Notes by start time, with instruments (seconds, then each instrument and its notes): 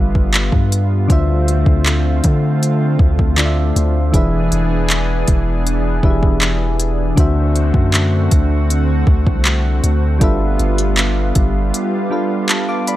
Already playing: 808-style bass G1, synth keys G3 D4 F4 A4 B4 E5, analog synth pad G3 B3 F4
0.15 kick
0.34 clap, closed hi-hat
0.52 808-style bass G2, kick
0.72 closed hi-hat
1.07 808-style bass D2, synth keys D3 D4 F4 C5, analog synth pad D3 A3 C4, kick, closed hi-hat
1.12 synth keys E5
1.48 closed hi-hat
1.66 808-style bass D2, kick
1.86 clap, closed hi-hat
2.24 808-style bass D3, kick, closed hi-hat
2.63 closed hi-hat
2.99 808-style bass D2, kick
3.19 kick
3.37 synth keys D3 D4 F4 C5 D5, clap, closed hi-hat
3.46 synth keys E5
3.76 808-style bass D2, closed hi-hat
4.12 808-style bass E1, synth keys E3 D4 G#4 B4, analog synth pad E3 B3 D4 G#4, kick, closed hi-hat
4.16 synth keys E5
4.52 808-style bass E1, closed hi-hat
4.90 clap, closed hi-hat
5.28 808-style bass E1, kick, closed hi-hat
5.67 closed hi-hat
6.03 808-style bass E1, synth keys E3 D4 G4 B4 E5, kick
6.10 synth keys G#4
6.23 kick
6.41 clap, closed hi-hat
6.80 closed hi-hat
7.15 808-style bass D2, synth keys D3 D4 F#4 C5, analog synth pad D3 A3 C4 F#4, kick, closed hi-hat
7.20 synth keys E5
7.56 closed hi-hat
7.74 808-style bass F#2, kick
7.94 clap, closed hi-hat
8.31 808-style bass D2, kick, closed hi-hat
8.70 closed hi-hat
9.07 808-style bass D2, kick
9.27 808-style bass C2, kick
9.45 clap, closed hi-hat
9.84 808-style bass D2, closed hi-hat
10.19 808-style bass G1, synth keys G3 D4 F4 A4, analog synth pad G3 B3 F4, kick, closed hi-hat
10.23 synth keys B4 E5
10.59 808-style bass G1, closed hi-hat
10.78 closed hi-hat
10.97 clap, closed hi-hat
11.35 808-style bass G1, kick, closed hi-hat
11.74 closed hi-hat
12.10 synth keys G3 D4 F4 A4 B4 F5
12.49 synth keys A5, clap, closed hi-hat
12.69 synth keys F5 D6
12.87 synth keys D5 B5, closed hi-hat